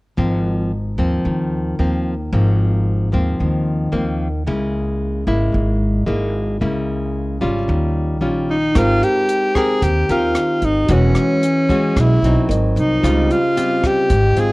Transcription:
0.18 upright bass G#1, nylon-string guitar G#2 F3 A#3 C4
0.98 upright bass D#2, nylon-string guitar F3 A#3 C4
1.25 upright bass D#2, nylon-string guitar D#3
1.79 upright bass D#2, nylon-string guitar F3 A#3 C4
2.33 upright bass G#1, nylon-string guitar G#2 F3 A#3 C4
3.12 upright bass D#2, nylon-string guitar F3 A#3 C4
3.40 upright bass D#2, nylon-string guitar D#3
3.92 upright bass D#2, nylon-string guitar F3 A#3 C4
4.46 upright bass C#2, nylon-string guitar C#3 G#3 A#3 E4
5.27 upright bass G#1, nylon-string guitar G#3 A#3 E4
5.53 upright bass G#1, nylon-string guitar G#2
6.07 upright bass G#1, nylon-string guitar G#3 A#3 E4
6.61 upright bass C#2, nylon-string guitar C#3 G#3 A#3 E4
7.41 upright bass G#1, nylon-string guitar G3 C#4 F4
7.68 upright bass D#2, nylon-string guitar D#3
8.21 upright bass A#1, nylon-string guitar G3 C#4 F4
8.50 alto saxophone D#4
8.72 upright bass G#1, nylon-string guitar G#3 C4 G4 A#4, tine electric piano D#4 G4 A#4, kick, cross-stick, closed hi-hat
8.77 alto saxophone F4, tine electric piano C5
9.03 alto saxophone G4, closed hi-hat
9.29 closed hi-hat
9.55 nylon-string guitar C4 G4 A#4, alto saxophone G#4, kick, cross-stick, closed hi-hat
9.82 upright bass D#2, nylon-string guitar D#3, alto saxophone G4, kick, closed hi-hat
10.09 upright bass D#2, nylon-string guitar C4 G4 A#4, alto saxophone F4, closed hi-hat
10.35 cross-stick, closed hi-hat
10.62 upright bass G#1, alto saxophone D#4, closed hi-hat
10.86 upright bass E1, nylon-string guitar E3 G#3 C#4, tine electric piano F#4 G#4, kick, closed hi-hat
10.90 alto saxophone C#4, nylon-string guitar F#4, tine electric piano B4 C#5
11.15 cross-stick, closed hi-hat
11.43 closed hi-hat
11.69 nylon-string guitar G#3 C#4 F#4, kick, closed hi-hat
11.96 upright bass B1, nylon-string guitar B2, kick, cross-stick, closed hi-hat
12.00 alto saxophone E4
12.22 upright bass B1, nylon-string guitar F#3 C4 D#4, closed hi-hat
12.48 upright bass G#1, tine electric piano F#4 A#4 C5 D#5, closed hi-hat
12.76 upright bass C2, alto saxophone D#4, closed hi-hat
13.00 upright bass C#2, nylon-string guitar C#3 G3, tine electric piano F4 G4, kick
13.04 nylon-string guitar C4 F4, tine electric piano C5 D#5, cross-stick, closed hi-hat
13.31 alto saxophone F4, closed hi-hat
13.57 nylon-string guitar G3 C4 F4, closed hi-hat
13.83 alto saxophone G4, kick, cross-stick, closed hi-hat
14.10 upright bass G#1, nylon-string guitar G#2, kick, closed hi-hat
14.35 upright bass G#1, nylon-string guitar C4 F4, tine electric piano F4 C5 F5 G5, closed hi-hat
14.40 alto saxophone G#4

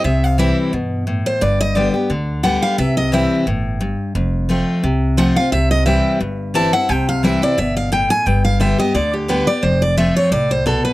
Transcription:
0.04 upright bass C2, steel-string acoustic guitar C3 E5
0.24 steel-string acoustic guitar F5
0.38 steel-string acoustic guitar E3 G3 C4 E4 E5
0.73 upright bass G2, steel-string acoustic guitar B2
1.07 steel-string acoustic guitar A2
1.26 steel-string acoustic guitar C5
1.41 upright bass G1, steel-string acoustic guitar G2 D5
1.61 steel-string acoustic guitar D#5
1.75 steel-string acoustic guitar D3 G3 B3 G4 D5
1.94 steel-string acoustic guitar B3 G4
2.10 upright bass D2, steel-string acoustic guitar D3
2.43 steel-string acoustic guitar D3 G3 B3 G4 F#5
2.62 steel-string acoustic guitar F5
2.78 upright bass C2, steel-string acoustic guitar C3 E5
2.97 steel-string acoustic guitar D#5
3.12 steel-string acoustic guitar E3 G3 C4 E4 E5
3.46 upright bass G1, steel-string acoustic guitar A2
3.81 steel-string acoustic guitar G2
4.15 upright bass F1, steel-string acoustic guitar F2
4.49 steel-string acoustic guitar F3 A3 C4 F4
4.84 upright bass C2, steel-string acoustic guitar C3
5.17 steel-string acoustic guitar F3 A3 C4 F4 F#5
5.36 steel-string acoustic guitar C4 F4 F5
5.52 upright bass C2, steel-string acoustic guitar C3 E5
5.71 steel-string acoustic guitar D#5
5.86 steel-string acoustic guitar E3 G3 C4 E4 E5
6.21 upright bass G1, steel-string acoustic guitar G2
6.54 steel-string acoustic guitar E3 G3 C4 E4 A5
6.73 steel-string acoustic guitar C4 E4 F#5
6.89 upright bass C2, steel-string acoustic guitar C3 G5
7.09 steel-string acoustic guitar F5
7.23 steel-string acoustic guitar E3 G3 C4 E4 E5
7.42 steel-string acoustic guitar C4 E4 D5
7.57 upright bass G1, steel-string acoustic guitar B2 E5
7.77 steel-string acoustic guitar F5
7.92 steel-string acoustic guitar A2 G5
8.10 steel-string acoustic guitar G#5
8.26 upright bass G1, steel-string acoustic guitar G2 G5
8.45 steel-string acoustic guitar F5
8.60 steel-string acoustic guitar D3 G3 B3 G4 E5
8.78 steel-string acoustic guitar B3 G4 D#5
8.94 upright bass D2, steel-string acoustic guitar D3 D5
9.14 steel-string acoustic guitar G4
9.28 steel-string acoustic guitar D3 G3 B3 G4 B4
9.47 steel-string acoustic guitar B3 G4 D5
9.63 upright bass F1, steel-string acoustic guitar F2 C5
9.82 steel-string acoustic guitar D5
9.97 steel-string acoustic guitar F3 A3 C4 F4 E5
10.16 steel-string acoustic guitar C#5
10.31 upright bass C2, steel-string acoustic guitar A2 D5
10.51 steel-string acoustic guitar C5
10.66 steel-string acoustic guitar B2 A4
10.85 steel-string acoustic guitar B4

